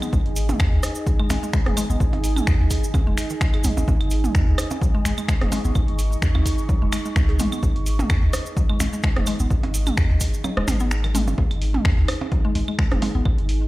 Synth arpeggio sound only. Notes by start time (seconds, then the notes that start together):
0.02 B3
1.19 G#3
1.30 G#3
1.43 G#3
1.54 G#3
1.66 G#4
1.77 G#3
1.90 B3
3.07 G#3
3.31 D#3
3.54 G#4
3.65 F#3
4.82 F#3
4.95 G#3
5.05 G#3
5.18 G#3
5.28 G#3
5.41 G#4
5.52 G#3
5.65 B3
6.69 F#3
6.82 G#3
6.93 G#3
7.05 G#3
7.16 G#3
7.29 G#4
7.40 G#3
7.52 B3
8.57 F#3
8.70 G#3
8.80 G#3
8.93 G#3
9.04 G#3
9.16 G#4
9.27 G#3
9.40 B3
10.44 F#3
10.57 G#3
10.80 B3
11.04 D#3
11.15 G#3
12.32 F#3
12.45 G#3
12.55 G#3
12.68 G#3
12.79 G#3
12.91 G#4
13.02 G#3
13.15 B3